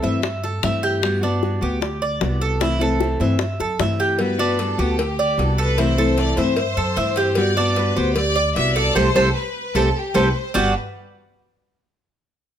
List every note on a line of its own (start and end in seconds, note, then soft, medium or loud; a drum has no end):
0.02 0.59 G2 medium
0.02 0.21 E3 medium
0.02 0.21 A3 medium
0.02 0.21 C4 medium
0.02 0.22 E4 medium
0.02 0.42 E5 medium
0.02 high bongo soft
0.22 muted nylon-string guitar stroke medium
0.22 high bongo medium
0.44 0.63 A4 medium
0.44 high bongo soft
0.62 1.56 G2 medium
0.62 1.01 E3 soft
0.62 1.01 A3 soft
0.62 1.02 C4 medium
0.62 1.02 E4 medium
0.62 0.83 E5 medium
0.62 high bongo medium
0.62 low bongo medium
0.83 1.22 G4 medium
1.02 1.21 G3 medium
1.02 1.22 B3 medium
1.02 1.20 F#4 medium
1.02 high bongo medium
1.21 1.42 B3 medium
1.21 1.61 D4 medium
1.21 1.41 F#4 medium
1.42 1.61 G3 soft
1.42 1.62 B3 medium
1.42 1.60 F#4 medium
1.42 high bongo medium
1.61 2.17 D2 loud
1.61 1.80 B3 medium
1.61 1.80 F#4 medium
1.61 2.01 G4 medium
1.81 muted nylon-string guitar stroke medium
1.81 high bongo medium
2.02 2.40 D5 medium
2.20 3.14 C2 medium
2.20 2.60 G3 soft
2.20 2.60 B3 medium
2.20 2.61 F#4 medium
2.20 high bongo medium
2.20 low bongo medium
2.41 2.61 A4 medium
2.60 2.80 C3 medium
2.60 2.80 E3 medium
2.60 2.80 A3 medium
2.60 2.79 C4 medium
2.60 2.80 E4 medium
2.60 2.79 E4 medium
2.60 high bongo medium
2.80 2.99 E3 medium
2.80 3.00 A3 medium
2.80 3.00 C4 medium
2.80 2.99 E4 medium
2.80 3.20 A4 medium
2.80 high bongo soft
3.00 3.19 E3 medium
3.00 3.20 A3 medium
3.00 3.20 C4 medium
3.00 3.19 E4 medium
3.00 high bongo medium
3.20 3.57 G2 medium
3.20 3.40 E3 medium
3.20 3.40 A3 medium
3.20 3.40 C4 medium
3.20 3.39 E4 medium
3.20 3.59 E5 medium
3.20 high bongo soft
3.39 muted nylon-string guitar stroke medium
3.39 high bongo medium
3.60 3.78 F#2 medium
3.60 3.79 A4 medium
3.60 high bongo soft
3.79 4.73 G2 medium
3.79 4.19 E3 soft
3.79 4.18 A3 medium
3.79 4.19 C4 soft
3.79 4.20 E4 medium
3.79 4.00 E5 medium
3.79 high bongo medium
3.79 low bongo medium
4.00 4.19 G4 medium
4.19 4.38 G3 medium
4.19 4.39 B3 medium
4.19 4.37 F#4 medium
4.19 4.56 B4 medium
4.19 cowbell loud
4.38 4.59 B3 medium
4.38 4.78 D4 medium
4.38 4.58 F#4 medium
4.59 4.78 G3 soft
4.59 4.79 B3 medium
4.59 4.77 F#4 medium
4.59 4.99 A4 medium
4.59 cowbell medium
4.78 5.34 D2 medium
4.78 4.98 B3 medium
4.78 4.98 F#4 medium
4.78 5.17 G4 medium
4.98 5.38 G4 medium
4.98 muted nylon-string guitar stroke medium
4.98 cowbell loud
5.19 5.57 D5 medium
5.37 6.31 C2 loud
5.37 5.77 G3 medium
5.37 5.77 B3 medium
5.37 5.78 F#4 soft
5.37 5.58 A4 medium
5.37 cowbell medium
5.58 5.78 A4 medium
5.58 5.77 B4 loud
5.58 cowbell medium
5.77 5.97 C3 medium
5.77 5.97 E3 medium
5.77 5.97 A3 medium
5.77 5.97 C4 medium
5.77 5.97 E4 medium
5.77 6.18 C5 medium
5.77 cowbell loud
5.98 6.16 E3 medium
5.98 6.17 A3 medium
5.98 6.17 C4 medium
5.98 6.17 E4 medium
5.98 6.37 A4 medium
6.17 6.37 E3 medium
6.17 6.37 A3 medium
6.17 6.37 C4 medium
6.17 6.35 E4 medium
6.17 6.38 D5 loud
6.17 cowbell medium
6.37 6.74 G2 medium
6.37 6.56 E3 medium
6.37 6.56 A3 medium
6.37 6.57 C4 medium
6.37 6.56 E4 medium
6.37 7.33 C5 loud
6.37 6.76 E5 medium
6.37 cowbell medium
6.57 muted nylon-string guitar stroke medium
6.57 cowbell loud
6.77 6.95 F#2 medium
6.77 6.96 A4 medium
6.97 7.90 G2 medium
6.97 7.36 E3 soft
6.97 7.36 A3 medium
6.97 7.37 C4 medium
6.97 7.37 E4 medium
6.97 7.16 E5 medium
6.97 cowbell medium
7.16 7.56 G4 medium
7.16 cowbell medium
7.35 7.56 G3 medium
7.35 7.56 B3 medium
7.35 7.55 F#4 medium
7.35 7.77 D5 loud
7.35 cowbell loud
7.56 7.76 B3 medium
7.56 7.95 D4 loud
7.56 7.76 F#4 medium
7.76 7.96 G3 medium
7.76 7.96 B3 medium
7.76 7.95 F#4 medium
7.76 7.96 B4 medium
7.76 cowbell medium
7.96 8.52 D2 medium
7.96 8.15 B3 medium
7.96 8.15 F#4 medium
7.96 8.35 G4 medium
7.96 8.16 C5 medium
8.15 8.53 D5 loud
8.15 muted nylon-string guitar stroke medium
8.15 cowbell loud
8.36 8.74 D5 medium
8.55 8.93 C2 medium
8.55 8.95 G3 medium
8.55 8.95 B3 soft
8.55 8.96 F#4 medium
8.55 8.74 E5 loud
8.55 cowbell medium
8.74 8.94 A4 medium
8.74 8.94 D5 loud
8.74 cowbell medium
8.95 9.11 C2 loud
8.95 9.09 G3 loud
8.95 9.09 A3 loud
8.95 9.09 C4 medium
8.95 9.08 G4 medium
8.95 9.08 A4 medium
8.95 9.35 C5 loud
8.95 9.09 C5 medium
8.95 cowbell loud
9.15 9.30 C2 loud
9.15 9.28 G3 medium
9.15 9.28 A3 medium
9.15 9.28 C4 loud
9.15 9.28 G4 medium
9.15 9.28 A4 loud
9.15 9.28 C5 loud
9.15 cowbell loud
9.35 9.75 B4 medium
9.75 9.90 C2 medium
9.75 9.88 G3 loud
9.75 9.88 A3 loud
9.75 9.88 C4 loud
9.75 9.88 G4 medium
9.75 9.95 A4 medium
9.75 9.88 A4 medium
9.75 9.88 C5 medium
9.75 cowbell loud
9.97 10.16 G4 medium
10.14 10.30 C2 loud
10.14 10.27 G3 loud
10.14 10.27 A3 medium
10.14 10.27 C4 medium
10.14 10.28 G4 loud
10.14 10.28 A4 medium
10.14 10.36 B4 medium
10.14 10.28 C5 medium
10.14 cowbell loud
10.36 10.55 C5 medium
10.54 10.74 G1 loud
10.54 10.73 G3 loud
10.54 10.70 G3 medium
10.54 10.71 B3 medium
10.54 10.73 D4 medium
10.54 10.73 F#4 loud
10.54 10.71 F#4 medium
10.54 10.74 B4 medium
10.54 low bongo medium